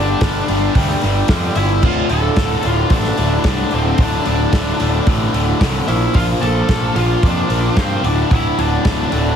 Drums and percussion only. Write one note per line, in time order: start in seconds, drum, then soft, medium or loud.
0.21 kick loud
0.21 snare loud
0.21 open hi-hat medium
0.48 open hi-hat medium
0.75 kick loud
0.75 open hi-hat medium
0.89 snare soft
1.01 open hi-hat medium
1.28 kick loud
1.28 snare loud
1.28 open hi-hat medium
1.56 open hi-hat medium
1.83 kick loud
1.83 crash loud
2.09 open hi-hat medium
2.36 kick loud
2.36 snare loud
2.36 open hi-hat medium
2.63 open hi-hat medium
2.90 kick loud
2.90 open hi-hat medium
3.04 snare soft
3.18 open hi-hat medium
3.44 kick loud
3.44 snare loud
3.44 open hi-hat medium
3.71 open hi-hat medium
3.98 kick loud
3.98 open hi-hat medium
4.26 open hi-hat medium
4.53 kick loud
4.53 snare loud
4.53 open hi-hat medium
4.80 open hi-hat medium
5.07 kick loud
5.07 open hi-hat medium
5.34 open hi-hat medium
5.61 kick loud
5.61 snare loud
5.61 open hi-hat medium
5.88 open hi-hat medium
6.14 kick loud
6.14 open hi-hat medium
6.43 open hi-hat medium
6.69 kick loud
6.69 snare loud
6.69 open hi-hat medium
6.96 open hi-hat medium
7.23 kick loud
7.23 open hi-hat medium
7.50 open hi-hat medium
7.77 kick loud
7.77 snare loud
7.77 open hi-hat medium
8.04 open hi-hat medium
8.31 kick loud
8.31 open hi-hat medium
8.59 open hi-hat medium
8.85 kick loud
8.85 snare loud
8.85 open hi-hat medium
9.12 open hi-hat medium